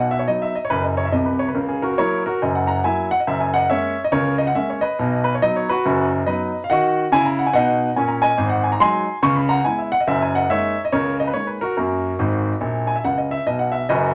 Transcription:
grand piano
Already playing: B1 B2
0.00 F#5
0.11 E5
0.19 C#5
0.28 F#3 B3 D#4 D#5
0.42 E5
0.55 D#5
0.65 C#5
0.70 F#1 F#2 B4
0.84 D#5
0.97 C#5
1.05 E5
1.12 C2 C3 D#5
1.26 B4
1.39 C#5
1.48 B4
1.55 C#2 C#3 A#4
1.69 G#4
1.82 F#4 A#4
1.98 F#3 A#3 E4 A#4 C#5
2.26 F#4 A#4
2.42 F#1 F#2 D#5
2.55 F#5
2.67 F#5 A#5
2.84 F#3 A#3 E4 E5 G#5
3.11 F#5
3.20 D#5
3.27 F#1 F#2 E5
3.40 G#5
3.54 D#5 F#5
3.69 G#3 A#3 C#4 C#5 E5
4.04 D#5
4.12 C#2 C#3 A#4 C#5
4.38 D#5
4.47 F#5
4.55 G#3 A#3 C#4 E5
4.70 C#5
4.81 B4 D#5
4.99 B1 B2
5.24 B4
5.35 C#5
5.42 F#3 B3 D#4 D#5
5.56 C#5
5.69 F#4 B4
5.85 F#1 F#2
6.26 F#3 B3 D#4 B4 D#5
6.64 F5
6.70 D#3 F#4 D#5 F#5
7.12 C#3 E4 G#5
7.26 A#5
7.39 F#5
7.47 G#5
7.53 B2 D#4 D#5 F#5
7.96 A#2 C#4 G#5
8.08 A#5
8.22 D#5 G#5
8.38 G#1 G#2
8.50 F#5
8.64 G#5
8.72 A#5
8.80 F#3 G#3 D#4 G#5 C6
9.23 C#2 C#3 C#6
9.36 B5
9.49 F#5 A#5
9.65 G#3 B3 E4 G#5
9.79 E5
9.92 F#5
10.01 D#5
10.07 F#1 F#2 E5
10.22 G#5
10.35 D#5 F#5
10.50 G#3 A#3 D#4 C#5 E5
10.85 D#5
10.92 C#2 C#3 A#4 C#5
11.20 D#5
11.27 B4
11.34 G#3 A#3 D#4 C#5
11.47 B4
11.61 F#4 A#4
11.77 F#2 A#3 F#4 A#4
12.19 G#1 G#2
12.61 A#1 A#2
12.87 G#5
12.96 E5
13.04 C#2 C#3 F#5
13.18 D#5
13.31 E5
13.47 B1 B2 D#5
13.59 F#5
13.72 E5
13.89 F#1 F#2 F#4 B4 D#5

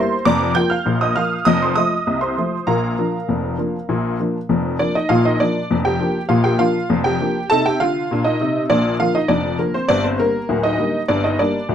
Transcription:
honky-tonk piano
Already playing: G3 A#3 E4 C5 C6
0.25 F1 F2 D5 A#5 D6
0.55 F3 A#3 F4 G5 G6
0.70 F5 F6
0.85 A#1 A#2
1.01 D#5 D#6
1.16 F3 A#3 F4 F5 F6
1.45 F1 F2 D#5 D#6
1.62 C5 C6
1.75 F3 A3 F4 D#5 D#6
2.07 C2 C3
2.21 C5 C6
2.38 F3 A3 F4
2.67 A#1 A#2 A#4 F5 A#5
2.99 F3 A#3 D4
3.28 F1 F2
3.58 F3 A#3 D4
3.89 A#1 A#2
4.20 F3 A#3 D4
4.49 F1 F2
4.79 F3 A#3 D4 D5
4.95 D#4 D#5
5.09 A#1 A#2 F4 F5
5.25 D#4 D#5
5.40 F3 A#3 D4 D5
5.71 F1 F2
5.85 G4 G5
6.00 F3 A#3 D4
6.29 A#1 A#2 F4 F5
6.44 G4 G5
6.59 F3 A#3 D4 F4 F5
6.89 F1 F2
7.04 G4 G5
7.20 F3 A#3 D4
7.50 C3 D#4 A4 A5
7.66 G4 G5
7.80 D3 F4 F5
8.11 A#2 D4
8.24 D#4 D#5
8.40 C3 D#4
8.70 A#1 A#2 D4 D5
9.00 D3 F3 A#3 F4 F5
9.15 D#4 D#5
9.28 F1 F2 D4 D5
9.59 D3 F3 A#3 A#4
9.74 C4 C5
9.88 G1 G2 D4 D5
10.04 C4 C5
10.20 D3 G3 A#3 A#4
10.49 D1 D2
10.63 D#4 D#5
10.79 D3 G3 A#3
11.08 G1 G2 D4 D5
11.24 D#4 D#5
11.39 D3 G3 A#3 D4 D5
11.69 D1 D2

